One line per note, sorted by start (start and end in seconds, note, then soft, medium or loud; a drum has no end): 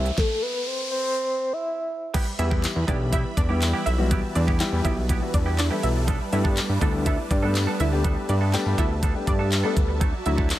0.00 0.11 C2 medium
0.00 0.14 E3 medium
0.00 0.14 A3 medium
0.00 0.15 C4 medium
0.00 0.15 G4 medium
0.00 0.19 E5 loud
0.00 riser medium
0.05 muted clean electric guitar stroke medium
0.05 closed hi-hat soft
0.18 0.44 A4 loud
0.18 kick loud
0.18 snare medium
0.42 0.68 B4 medium
0.67 0.91 C5 medium
0.91 1.54 C5 loud
1.53 2.14 E5 loud
2.14 2.33 G3 medium
2.14 9.97 G3 medium
2.14 2.26 B3 medium
2.14 2.26 E4 medium
2.14 2.25 G4 loud
2.14 9.97 B4 medium
2.14 6.04 E5 medium
2.14 4.09 B5 medium
2.14 kick loud
2.14 closed hi-hat medium
2.14 crash loud
2.26 muted clean electric guitar stroke soft
2.39 2.66 E2 loud
2.39 2.69 E3 medium
2.39 2.69 G3 medium
2.39 2.69 B3 medium
2.39 2.69 E4 medium
2.39 2.50 E4 medium
2.39 2.69 G4 medium
2.39 2.50 E5 medium
2.39 muted clean electric guitar stroke soft
2.39 closed hi-hat medium
2.51 2.62 G3 medium
2.51 2.62 B3 medium
2.51 2.63 E4 medium
2.51 2.63 G4 medium
2.51 kick medium
2.63 muted clean electric guitar stroke soft
2.63 clap loud
2.63 closed hi-hat medium
2.63 tambourine medium
2.75 2.85 E2 medium
2.75 muted clean electric guitar stroke soft
2.87 3.24 B1 medium
2.87 3.25 E3 medium
2.87 3.07 G3 medium
2.87 3.25 G3 medium
2.87 3.00 B3 loud
2.87 3.25 B3 medium
2.87 2.99 D4 medium
2.87 3.25 E4 medium
2.87 2.99 E4 loud
2.87 3.26 G4 medium
2.87 2.99 G4 loud
2.87 2.99 D5 medium
2.87 kick loud
2.87 closed hi-hat medium
3.00 muted clean electric guitar stroke medium
3.12 3.32 G3 medium
3.12 3.24 B3 medium
3.12 3.24 E4 medium
3.12 3.34 E4 medium
3.12 3.23 G4 medium
3.12 3.34 E5 medium
3.12 kick medium
3.12 closed hi-hat loud
3.24 muted clean electric guitar stroke medium
3.37 3.74 E2 loud
3.37 3.48 D4 medium
3.37 3.48 D5 medium
3.37 muted clean electric guitar stroke medium
3.37 kick medium
3.37 closed hi-hat medium
3.49 3.79 E3 medium
3.49 3.79 G3 medium
3.49 3.60 G3 soft
3.49 3.79 B3 medium
3.49 3.61 B3 medium
3.49 3.61 E4 medium
3.49 3.80 E4 medium
3.49 3.61 G4 medium
3.49 3.80 G4 medium
3.62 muted clean electric guitar stroke medium
3.62 clap loud
3.62 closed hi-hat medium
3.62 tambourine medium
3.73 3.85 G3 medium
3.73 3.85 B3 medium
3.73 3.85 E4 medium
3.73 3.86 G4 medium
3.86 4.23 B1 loud
3.86 3.97 E4 medium
3.86 3.97 E5 medium
3.86 muted clean electric guitar stroke soft
3.86 closed hi-hat medium
3.98 4.36 E3 medium
3.98 4.36 G3 medium
3.98 4.36 B3 medium
3.98 4.36 E4 medium
3.98 4.36 F#4 medium
3.98 muted clean electric guitar stroke medium
4.11 4.30 G3 medium
4.11 4.23 B3 medium
4.11 4.22 E4 medium
4.11 4.22 G4 loud
4.11 10.59 A5 loud
4.11 kick loud
4.11 closed hi-hat medium
4.23 muted clean electric guitar stroke soft
4.35 4.63 E2 loud
4.35 4.47 D4 medium
4.35 4.46 D5 medium
4.35 muted clean electric guitar stroke soft
4.35 closed hi-hat medium
4.47 4.59 G3 medium
4.47 4.59 B3 medium
4.47 4.59 E4 medium
4.47 4.60 G4 medium
4.47 kick medium
4.60 4.97 E3 loud
4.60 4.97 G3 loud
4.60 4.98 B3 loud
4.60 4.98 E4 loud
4.60 4.98 G4 loud
4.60 muted clean electric guitar stroke soft
4.60 clap loud
4.60 closed hi-hat medium
4.60 tambourine medium
4.72 4.82 E2 medium
4.72 muted clean electric guitar stroke soft
4.84 5.21 B1 loud
4.84 5.04 G3 medium
4.84 4.97 B3 medium
4.84 4.96 E4 medium
4.84 4.96 G4 loud
4.84 4.96 E5 medium
4.84 kick loud
4.84 closed hi-hat medium
4.97 muted clean electric guitar stroke soft
5.09 5.28 G3 medium
5.09 5.21 B3 loud
5.09 5.21 E4 medium
5.09 5.20 G4 loud
5.09 kick medium
5.09 closed hi-hat loud
5.22 5.51 E3 medium
5.22 5.52 G3 medium
5.22 5.52 B3 medium
5.22 5.52 E4 medium
5.22 5.52 F#4 medium
5.22 muted clean electric guitar stroke soft
5.34 5.70 E2 loud
5.34 5.56 D4 medium
5.34 5.55 D5 medium
5.34 muted clean electric guitar stroke soft
5.34 kick medium
5.34 closed hi-hat medium
5.46 5.57 G3 medium
5.46 5.58 B3 medium
5.46 5.58 E4 medium
5.46 5.58 G4 medium
5.58 5.70 D4 medium
5.58 5.69 D5 medium
5.58 muted clean electric guitar stroke soft
5.58 clap loud
5.58 closed hi-hat medium
5.58 tambourine medium
5.71 6.08 E3 medium
5.71 6.08 G3 medium
5.71 5.82 G3 medium
5.71 6.08 B3 medium
5.71 5.82 B3 medium
5.71 6.08 E4 medium
5.71 5.82 E4 medium
5.71 5.83 G4 loud
5.71 6.08 A4 medium
5.83 6.20 B1 medium
5.83 5.94 E4 medium
5.83 5.94 E5 medium
5.83 muted clean electric guitar stroke soft
5.83 closed hi-hat medium
5.95 muted clean electric guitar stroke soft
6.07 6.27 G3 loud
6.07 6.20 B3 loud
6.07 6.19 D4 loud
6.07 6.19 A4 loud
6.07 8.03 D5 medium
6.07 kick loud
6.07 closed hi-hat medium
6.20 muted clean electric guitar stroke medium
6.32 6.60 G2 loud
6.32 6.62 G3 medium
6.32 6.62 A3 medium
6.32 6.62 B3 medium
6.32 6.62 D4 medium
6.32 6.44 E4 medium
6.32 6.62 G4 medium
6.32 6.43 E5 medium
6.32 muted clean electric guitar stroke soft
6.32 closed hi-hat medium
6.44 6.56 G3 medium
6.44 6.56 B3 medium
6.44 6.56 D4 medium
6.44 6.57 A4 medium
6.44 kick medium
6.57 clap loud
6.57 closed hi-hat loud
6.57 tambourine medium
6.69 6.78 G2 medium
6.69 muted clean electric guitar stroke soft
6.81 7.18 D2 medium
6.81 7.01 G3 medium
6.81 7.19 G3 medium
6.81 7.19 A3 medium
6.81 7.19 B3 medium
6.81 6.94 B3 loud
6.81 7.19 D4 medium
6.81 6.93 D4 loud
6.81 6.93 D4 medium
6.81 7.19 E4 medium
6.81 6.93 A4 loud
6.81 6.92 D5 medium
6.81 kick loud
6.81 closed hi-hat medium
6.94 muted clean electric guitar stroke medium
7.06 7.25 G3 medium
7.06 7.18 B3 medium
7.06 7.18 D4 loud
7.06 7.28 E4 medium
7.06 7.17 A4 loud
7.06 7.28 E5 medium
7.06 kick loud
7.06 closed hi-hat loud
7.18 muted clean electric guitar stroke medium
7.30 7.67 G2 loud
7.30 7.42 D4 medium
7.30 7.42 D5 medium
7.30 muted clean electric guitar stroke medium
7.30 kick loud
7.30 closed hi-hat medium
7.43 7.73 G3 medium
7.43 7.54 G3 soft
7.43 7.73 A3 medium
7.43 7.73 B3 medium
7.43 7.54 B3 medium
7.43 7.55 D4 medium
7.43 7.73 D4 medium
7.43 7.73 G4 medium
7.43 7.55 A4 medium
7.55 muted clean electric guitar stroke soft
7.55 clap loud
7.55 closed hi-hat medium
7.55 tambourine medium
7.67 7.78 G3 medium
7.67 7.79 B3 medium
7.67 7.79 D4 medium
7.67 7.79 A4 medium
7.79 8.16 D2 medium
7.79 7.91 E4 medium
7.79 7.91 E5 medium
7.79 muted clean electric guitar stroke soft
7.79 closed hi-hat medium
7.92 8.29 G3 medium
7.92 8.29 A3 medium
7.92 8.30 B3 medium
7.92 8.30 D4 medium
7.92 8.30 G4 medium
7.92 muted clean electric guitar stroke soft
8.04 8.23 G3 medium
8.04 8.16 B3 loud
8.04 8.16 D4 loud
8.04 8.15 A4 loud
8.04 10.59 E5 medium
8.04 kick loud
8.04 closed hi-hat medium
8.16 muted clean electric guitar stroke medium
8.29 8.56 G2 loud
8.29 8.40 D4 medium
8.29 8.40 D5 medium
8.29 muted clean electric guitar stroke soft
8.29 closed hi-hat medium
8.41 8.52 G3 medium
8.41 8.53 B3 medium
8.41 8.53 D4 medium
8.41 8.53 A4 medium
8.53 8.91 G3 loud
8.53 8.91 A3 loud
8.53 8.91 B3 loud
8.53 8.91 D4 loud
8.53 8.91 G4 loud
8.53 clap loud
8.53 closed hi-hat medium
8.53 tambourine medium
8.66 8.75 G2 medium
8.66 muted clean electric guitar stroke soft
8.78 9.15 D2 medium
8.78 8.97 G3 medium
8.78 8.90 B3 loud
8.78 8.90 D4 medium
8.78 8.89 E4 medium
8.78 8.89 A4 loud
8.78 8.89 E5 medium
8.78 kick loud
8.78 closed hi-hat medium
8.90 muted clean electric guitar stroke medium
9.02 9.22 G3 medium
9.02 9.15 B3 medium
9.02 9.14 D4 loud
9.02 9.13 A4 loud
9.02 kick medium
9.02 closed hi-hat loud
9.15 9.45 G3 medium
9.15 9.45 A3 medium
9.15 9.45 B3 medium
9.15 9.45 D4 medium
9.15 9.45 G4 medium
9.15 muted clean electric guitar stroke soft
9.27 9.64 G2 loud
9.27 9.49 D4 medium
9.27 9.49 D5 medium
9.27 muted clean electric guitar stroke soft
9.27 kick medium
9.27 closed hi-hat medium
9.39 9.50 G3 medium
9.39 9.51 B3 medium
9.39 9.51 D4 medium
9.39 9.51 A4 medium
9.51 muted clean electric guitar stroke soft
9.51 clap loud
9.51 closed hi-hat medium
9.51 tambourine medium
9.64 10.01 G3 medium
9.64 9.75 G3 medium
9.64 10.01 A3 medium
9.64 10.01 B3 medium
9.64 9.75 B3 medium
9.64 9.76 D4 medium
9.64 10.01 D4 medium
9.64 9.76 A4 medium
9.64 10.01 A4 loud
9.76 10.13 D2 medium
9.76 muted clean electric guitar stroke soft
9.76 kick medium
9.76 closed hi-hat medium
9.88 muted clean electric guitar stroke medium
10.00 10.20 F#3 medium
10.00 10.13 A3 loud
10.00 10.12 E4 loud
10.00 10.59 F#4 medium
10.00 10.12 A4 loud
10.00 10.59 D5 medium
10.00 kick loud
10.00 closed hi-hat medium
10.13 muted clean electric guitar stroke medium
10.25 10.53 D2 loud
10.25 10.56 F#3 medium
10.25 10.56 A3 medium
10.25 10.56 D4 medium
10.25 10.56 E4 medium
10.25 10.37 E4 medium
10.25 10.56 F#4 medium
10.25 10.37 E5 medium
10.25 muted clean electric guitar stroke soft
10.25 closed hi-hat medium
10.38 10.49 F#3 medium
10.38 10.49 A3 medium
10.38 10.50 E4 medium
10.38 10.50 A4 medium
10.38 kick medium
10.50 muted clean electric guitar stroke soft
10.50 clap loud
10.50 closed hi-hat medium
10.50 tambourine medium